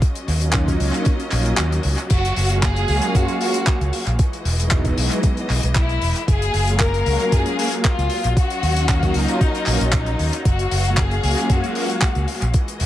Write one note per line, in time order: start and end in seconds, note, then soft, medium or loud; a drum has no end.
0.01 4.15 F#3 medium
0.01 2.08 C#4 medium
0.01 2.08 D#5 medium
0.01 kick loud
0.01 closed hi-hat medium
0.15 closed hi-hat soft
0.28 0.75 D#2 medium
0.28 open hi-hat loud
0.41 0.77 F#3 medium
0.41 0.77 A#3 medium
0.41 0.77 C#4 medium
0.41 0.77 D#4 medium
0.41 0.78 F4 medium
0.41 closed hi-hat medium
0.52 kick loud
0.52 clap loud
0.52 closed hi-hat medium
0.68 kick medium
0.68 closed hi-hat soft
0.80 0.90 C#2 loud
0.80 0.91 F#3 medium
0.80 0.91 A#3 medium
0.80 0.91 C#4 medium
0.80 0.91 D#4 medium
0.80 0.91 F4 medium
0.80 open hi-hat medium
0.94 1.07 F#3 medium
0.94 1.07 A#3 medium
0.94 1.07 C#4 medium
0.94 1.07 D#4 medium
0.94 1.07 F4 loud
0.94 closed hi-hat medium
1.05 kick loud
1.05 closed hi-hat medium
1.20 closed hi-hat soft
1.31 1.52 A#1 medium
1.31 1.47 F#3 medium
1.31 1.47 A#3 medium
1.31 1.47 C#4 medium
1.31 1.47 D#4 medium
1.31 1.47 F4 loud
1.31 clap soft
1.31 open hi-hat loud
1.46 closed hi-hat medium
1.57 1.78 D#2 medium
1.57 clap loud
1.57 closed hi-hat medium
1.72 closed hi-hat soft
1.83 1.95 C#2 medium
1.83 open hi-hat medium
1.98 closed hi-hat medium
2.10 2.30 F#1 medium
2.10 4.17 A#3 medium
2.10 2.60 F#4 loud
2.10 4.17 F5 medium
2.10 kick loud
2.10 closed hi-hat medium
2.10 crash medium
2.25 closed hi-hat soft
2.36 2.83 F#1 medium
2.36 open hi-hat loud
2.50 2.58 F#3 medium
2.50 2.58 G#3 medium
2.50 2.58 A#3 medium
2.50 2.59 C#4 medium
2.50 2.59 F4 loud
2.50 closed hi-hat medium
2.63 3.15 G#4 loud
2.63 kick loud
2.63 clap loud
2.63 closed hi-hat medium
2.76 closed hi-hat soft
2.88 2.99 C#2 medium
2.88 3.00 F#3 medium
2.88 3.01 G#3 medium
2.88 3.01 A#3 medium
2.88 3.01 C#4 medium
2.88 3.01 F#4 loud
2.88 open hi-hat loud
3.02 3.38 F#3 medium
3.02 3.38 G#3 medium
3.02 3.38 A#3 medium
3.02 3.38 C#4 medium
3.02 3.38 F4 medium
3.02 closed hi-hat medium
3.15 3.25 F#2 medium
3.15 3.40 F#4 loud
3.15 kick loud
3.15 closed hi-hat medium
3.28 closed hi-hat soft
3.41 3.50 F#3 medium
3.41 3.50 G#3 medium
3.41 3.50 A#3 medium
3.41 3.50 C#4 medium
3.41 3.50 F4 medium
3.41 3.89 F#4 medium
3.41 open hi-hat loud
3.54 closed hi-hat medium
3.67 kick loud
3.67 clap loud
3.67 closed hi-hat medium
3.81 3.90 C#2 medium
3.81 closed hi-hat soft
3.93 open hi-hat medium
4.07 4.16 A#1 loud
4.07 closed hi-hat medium
4.19 6.26 E3 medium
4.19 6.26 G#3 medium
4.19 6.26 D#5 medium
4.19 kick loud
4.19 closed hi-hat medium
4.33 closed hi-hat soft
4.45 4.92 E1 medium
4.45 open hi-hat loud
4.59 4.95 F#3 medium
4.59 4.95 G#3 medium
4.59 4.95 B3 medium
4.59 4.95 D#4 medium
4.59 4.95 E4 medium
4.59 closed hi-hat medium
4.71 kick loud
4.71 clap loud
4.71 closed hi-hat medium
4.85 kick medium
4.85 closed hi-hat soft
4.97 5.08 B1 loud
4.97 5.08 F#3 medium
4.97 5.08 G#3 medium
4.97 5.08 B3 medium
4.97 5.08 D#4 medium
4.97 5.08 E4 medium
4.97 open hi-hat loud
5.11 5.24 F#3 loud
5.11 5.24 G#3 medium
5.11 5.24 B3 medium
5.11 5.24 D#4 medium
5.11 5.25 E4 loud
5.11 closed hi-hat medium
5.23 kick loud
5.23 closed hi-hat medium
5.37 closed hi-hat soft
5.50 5.60 B1 medium
5.50 clap soft
5.50 open hi-hat loud
5.63 5.97 B1 loud
5.63 closed hi-hat medium
5.75 6.24 E4 loud
5.75 kick loud
5.75 clap loud
5.75 closed hi-hat medium
5.89 closed hi-hat soft
6.02 6.12 E1 medium
6.02 open hi-hat medium
6.16 closed hi-hat medium
6.28 6.47 F#1 loud
6.28 12.50 F#3 medium
6.28 8.35 A#3 medium
6.28 6.76 G#4 loud
6.28 8.35 F5 medium
6.28 kick loud
6.28 closed hi-hat medium
6.42 closed hi-hat soft
6.54 7.01 F#1 medium
6.54 open hi-hat loud
6.67 6.76 F#3 medium
6.67 6.76 G#3 medium
6.67 6.76 A#3 medium
6.67 6.76 C#4 medium
6.67 6.76 F4 loud
6.67 closed hi-hat medium
6.79 7.32 A#4 loud
6.79 kick loud
6.79 clap loud
6.79 closed hi-hat medium
6.94 closed hi-hat soft
7.06 7.16 C#2 medium
7.06 7.18 F#3 medium
7.06 7.18 G#3 medium
7.06 7.18 A#3 medium
7.06 7.18 C#4 medium
7.06 7.18 F#4 medium
7.06 open hi-hat medium
7.20 7.55 F#3 medium
7.20 7.55 G#3 medium
7.20 7.55 A#3 medium
7.20 7.56 C#4 medium
7.20 7.56 F4 medium
7.20 closed hi-hat medium
7.32 7.42 F#2 medium
7.32 7.58 G#4 loud
7.32 kick loud
7.32 closed hi-hat medium
7.46 closed hi-hat soft
7.58 7.67 F#3 medium
7.58 7.67 G#3 medium
7.58 7.67 A#3 medium
7.58 7.67 C#4 medium
7.58 7.68 F4 medium
7.58 7.71 G#4 loud
7.58 open hi-hat loud
7.72 closed hi-hat medium
7.85 8.33 F4 medium
7.85 kick loud
7.85 clap loud
7.85 closed hi-hat medium
7.98 8.07 C#2 medium
7.98 closed hi-hat soft
8.10 open hi-hat medium
8.24 8.33 A#1 medium
8.24 closed hi-hat medium
8.37 10.43 C#4 medium
8.37 9.15 F#4 loud
8.37 10.43 D#5 medium
8.37 kick loud
8.37 closed hi-hat medium
8.50 closed hi-hat soft
8.63 9.10 D#2 medium
8.63 open hi-hat loud
8.76 9.12 F#3 medium
8.76 9.12 A#3 medium
8.76 9.12 C#4 medium
8.76 9.12 D#4 medium
8.76 9.13 F5 medium
8.76 closed hi-hat medium
8.89 kick loud
8.89 clap loud
8.89 closed hi-hat medium
9.03 kick medium
9.03 closed hi-hat soft
9.14 9.25 C#2 medium
9.14 9.25 F#3 medium
9.14 9.26 A#3 medium
9.14 9.26 C#4 medium
9.14 9.92 D#4 loud
9.14 9.26 D#4 medium
9.14 9.26 F4 medium
9.14 open hi-hat medium
9.28 9.42 F#3 loud
9.28 9.42 A#3 medium
9.28 9.42 C#4 medium
9.28 9.42 D#4 medium
9.28 9.42 F4 loud
9.28 closed hi-hat medium
9.41 kick loud
9.41 closed hi-hat medium
9.55 closed hi-hat soft
9.66 9.77 A#1 medium
9.66 9.81 F#3 medium
9.66 9.81 A#3 medium
9.66 9.81 C#4 medium
9.66 9.82 D#4 medium
9.66 9.82 F4 loud
9.66 clap soft
9.66 open hi-hat loud
9.81 10.14 A#1 medium
9.81 closed hi-hat medium
9.92 10.42 D#4 medium
9.92 kick loud
9.92 clap loud
9.92 closed hi-hat medium
10.06 closed hi-hat soft
10.19 10.29 D#2 medium
10.19 open hi-hat medium
10.33 closed hi-hat medium
10.45 10.65 F#1 loud
10.45 12.52 A#3 medium
10.45 10.98 F#4 loud
10.45 12.52 F5 medium
10.45 kick loud
10.45 closed hi-hat medium
10.59 closed hi-hat soft
10.71 11.18 F#1 medium
10.71 open hi-hat loud
10.85 10.93 F#3 medium
10.85 10.93 G#3 medium
10.85 10.93 A#3 medium
10.85 10.93 C#4 medium
10.85 10.94 F4 loud
10.85 closed hi-hat medium
10.97 11.50 G#4 medium
10.97 kick loud
10.97 clap loud
10.97 closed hi-hat medium
11.11 closed hi-hat soft
11.23 11.34 C#2 loud
11.23 11.35 F#3 medium
11.23 11.35 G#3 medium
11.23 11.35 A#3 medium
11.23 11.35 C#4 medium
11.23 11.35 F#4 medium
11.23 open hi-hat loud
11.36 11.72 F#3 medium
11.36 11.72 G#3 medium
11.36 11.73 A#3 medium
11.36 11.73 C#4 medium
11.36 11.73 F4 medium
11.36 closed hi-hat medium
11.50 11.60 F#2 medium
11.50 11.75 F#4 medium
11.50 kick loud
11.50 closed hi-hat medium
11.64 closed hi-hat soft
11.75 11.84 F#3 medium
11.75 11.85 G#3 medium
11.75 11.85 A#3 medium
11.75 11.85 C#4 medium
11.75 11.85 F4 medium
11.75 12.25 F#4 medium
11.75 open hi-hat loud
11.90 closed hi-hat medium
12.01 kick loud
12.01 clap loud
12.01 closed hi-hat medium
12.15 12.25 C#2 medium
12.15 closed hi-hat soft
12.28 open hi-hat medium
12.42 12.51 A#1 loud
12.42 closed hi-hat medium
12.54 12.86 E3 medium
12.54 12.86 G#3 medium
12.54 12.86 D#5 medium
12.54 kick loud
12.54 closed hi-hat medium
12.68 closed hi-hat soft
12.80 12.86 E1 medium
12.80 open hi-hat loud